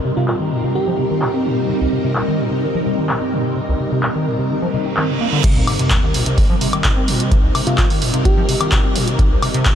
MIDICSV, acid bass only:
0, 0, Header, 1, 2, 480
1, 0, Start_track
1, 0, Key_signature, -3, "minor"
1, 0, Tempo, 468750
1, 1731, Time_signature, 4, 2, 24, 8
1, 9984, End_track
2, 0, Start_track
2, 0, Title_t, "Acid bass"
2, 0, Program_c, 0, 38
2, 50, Note_on_c, 0, 48, 78
2, 118, Note_off_c, 0, 48, 0
2, 173, Note_on_c, 0, 48, 101
2, 291, Note_on_c, 0, 46, 81
2, 306, Note_off_c, 0, 48, 0
2, 358, Note_off_c, 0, 46, 0
2, 413, Note_on_c, 0, 51, 75
2, 531, Note_on_c, 0, 46, 98
2, 547, Note_off_c, 0, 51, 0
2, 632, Note_off_c, 0, 46, 0
2, 653, Note_on_c, 0, 48, 75
2, 771, Note_on_c, 0, 51, 84
2, 786, Note_off_c, 0, 48, 0
2, 811, Note_off_c, 0, 51, 0
2, 893, Note_on_c, 0, 53, 101
2, 958, Note_off_c, 0, 53, 0
2, 1011, Note_on_c, 0, 48, 77
2, 1078, Note_off_c, 0, 48, 0
2, 1133, Note_on_c, 0, 51, 74
2, 1250, Note_on_c, 0, 46, 86
2, 1266, Note_off_c, 0, 51, 0
2, 1318, Note_off_c, 0, 46, 0
2, 1372, Note_on_c, 0, 60, 72
2, 1490, Note_on_c, 0, 46, 99
2, 1506, Note_off_c, 0, 60, 0
2, 1613, Note_on_c, 0, 48, 104
2, 1628, Note_off_c, 0, 46, 0
2, 1710, Note_off_c, 0, 48, 0
2, 1731, Note_on_c, 0, 48, 88
2, 1771, Note_off_c, 0, 48, 0
2, 1853, Note_on_c, 0, 36, 71
2, 1918, Note_off_c, 0, 36, 0
2, 1970, Note_on_c, 0, 48, 78
2, 2038, Note_off_c, 0, 48, 0
2, 2092, Note_on_c, 0, 48, 92
2, 2210, Note_on_c, 0, 46, 81
2, 2226, Note_off_c, 0, 48, 0
2, 2278, Note_off_c, 0, 46, 0
2, 2333, Note_on_c, 0, 51, 72
2, 2450, Note_on_c, 0, 46, 102
2, 2466, Note_off_c, 0, 51, 0
2, 2551, Note_off_c, 0, 46, 0
2, 2573, Note_on_c, 0, 48, 74
2, 2691, Note_on_c, 0, 51, 83
2, 2706, Note_off_c, 0, 48, 0
2, 2731, Note_off_c, 0, 51, 0
2, 2813, Note_on_c, 0, 53, 102
2, 2878, Note_off_c, 0, 53, 0
2, 2931, Note_on_c, 0, 48, 76
2, 2998, Note_off_c, 0, 48, 0
2, 3053, Note_on_c, 0, 51, 76
2, 3171, Note_on_c, 0, 46, 81
2, 3186, Note_off_c, 0, 51, 0
2, 3238, Note_off_c, 0, 46, 0
2, 3292, Note_on_c, 0, 60, 74
2, 3410, Note_on_c, 0, 46, 106
2, 3426, Note_off_c, 0, 60, 0
2, 3532, Note_on_c, 0, 48, 96
2, 3548, Note_off_c, 0, 46, 0
2, 3630, Note_off_c, 0, 48, 0
2, 3650, Note_on_c, 0, 48, 84
2, 3691, Note_off_c, 0, 48, 0
2, 3773, Note_on_c, 0, 36, 75
2, 3838, Note_off_c, 0, 36, 0
2, 3891, Note_on_c, 0, 48, 76
2, 3958, Note_off_c, 0, 48, 0
2, 4013, Note_on_c, 0, 48, 100
2, 4131, Note_on_c, 0, 46, 78
2, 4146, Note_off_c, 0, 48, 0
2, 4198, Note_off_c, 0, 46, 0
2, 4253, Note_on_c, 0, 51, 74
2, 4371, Note_on_c, 0, 46, 97
2, 4386, Note_off_c, 0, 51, 0
2, 4471, Note_off_c, 0, 46, 0
2, 4493, Note_on_c, 0, 48, 75
2, 4611, Note_on_c, 0, 51, 81
2, 4626, Note_off_c, 0, 48, 0
2, 4651, Note_off_c, 0, 51, 0
2, 4733, Note_on_c, 0, 53, 102
2, 4798, Note_off_c, 0, 53, 0
2, 4851, Note_on_c, 0, 48, 80
2, 4891, Note_off_c, 0, 48, 0
2, 4973, Note_on_c, 0, 60, 76
2, 5038, Note_off_c, 0, 60, 0
2, 5091, Note_on_c, 0, 51, 86
2, 5213, Note_on_c, 0, 48, 98
2, 5228, Note_off_c, 0, 51, 0
2, 5310, Note_off_c, 0, 48, 0
2, 5331, Note_on_c, 0, 58, 101
2, 5398, Note_off_c, 0, 58, 0
2, 5453, Note_on_c, 0, 50, 98
2, 5550, Note_off_c, 0, 50, 0
2, 5571, Note_on_c, 0, 48, 88
2, 5611, Note_off_c, 0, 48, 0
2, 5693, Note_on_c, 0, 36, 79
2, 5758, Note_off_c, 0, 36, 0
2, 5811, Note_on_c, 0, 48, 82
2, 5878, Note_off_c, 0, 48, 0
2, 5933, Note_on_c, 0, 48, 99
2, 6050, Note_on_c, 0, 46, 83
2, 6066, Note_off_c, 0, 48, 0
2, 6118, Note_off_c, 0, 46, 0
2, 6172, Note_on_c, 0, 51, 75
2, 6290, Note_on_c, 0, 46, 102
2, 6306, Note_off_c, 0, 51, 0
2, 6391, Note_off_c, 0, 46, 0
2, 6412, Note_on_c, 0, 48, 82
2, 6531, Note_on_c, 0, 51, 83
2, 6546, Note_off_c, 0, 48, 0
2, 6571, Note_off_c, 0, 51, 0
2, 6653, Note_on_c, 0, 53, 104
2, 6718, Note_off_c, 0, 53, 0
2, 6771, Note_on_c, 0, 48, 80
2, 6838, Note_off_c, 0, 48, 0
2, 6893, Note_on_c, 0, 51, 77
2, 7011, Note_on_c, 0, 46, 85
2, 7027, Note_off_c, 0, 51, 0
2, 7078, Note_off_c, 0, 46, 0
2, 7133, Note_on_c, 0, 60, 77
2, 7251, Note_on_c, 0, 46, 111
2, 7266, Note_off_c, 0, 60, 0
2, 7373, Note_on_c, 0, 48, 102
2, 7388, Note_off_c, 0, 46, 0
2, 7470, Note_off_c, 0, 48, 0
2, 7491, Note_on_c, 0, 48, 86
2, 7531, Note_off_c, 0, 48, 0
2, 7612, Note_on_c, 0, 36, 78
2, 7677, Note_off_c, 0, 36, 0
2, 7730, Note_on_c, 0, 48, 80
2, 7798, Note_off_c, 0, 48, 0
2, 7853, Note_on_c, 0, 48, 98
2, 7970, Note_on_c, 0, 46, 84
2, 7986, Note_off_c, 0, 48, 0
2, 8038, Note_off_c, 0, 46, 0
2, 8093, Note_on_c, 0, 51, 73
2, 8210, Note_on_c, 0, 46, 110
2, 8226, Note_off_c, 0, 51, 0
2, 8311, Note_off_c, 0, 46, 0
2, 8332, Note_on_c, 0, 48, 81
2, 8451, Note_on_c, 0, 51, 87
2, 8466, Note_off_c, 0, 48, 0
2, 8491, Note_off_c, 0, 51, 0
2, 8573, Note_on_c, 0, 53, 105
2, 8638, Note_off_c, 0, 53, 0
2, 8691, Note_on_c, 0, 48, 82
2, 8758, Note_off_c, 0, 48, 0
2, 8813, Note_on_c, 0, 51, 76
2, 8931, Note_on_c, 0, 46, 84
2, 8946, Note_off_c, 0, 51, 0
2, 8998, Note_off_c, 0, 46, 0
2, 9052, Note_on_c, 0, 60, 76
2, 9170, Note_on_c, 0, 46, 110
2, 9186, Note_off_c, 0, 60, 0
2, 9293, Note_on_c, 0, 48, 99
2, 9308, Note_off_c, 0, 46, 0
2, 9390, Note_off_c, 0, 48, 0
2, 9411, Note_on_c, 0, 48, 86
2, 9451, Note_off_c, 0, 48, 0
2, 9533, Note_on_c, 0, 36, 76
2, 9598, Note_off_c, 0, 36, 0
2, 9651, Note_on_c, 0, 48, 82
2, 9718, Note_off_c, 0, 48, 0
2, 9773, Note_on_c, 0, 48, 103
2, 9891, Note_on_c, 0, 46, 81
2, 9906, Note_off_c, 0, 48, 0
2, 9958, Note_off_c, 0, 46, 0
2, 9984, End_track
0, 0, End_of_file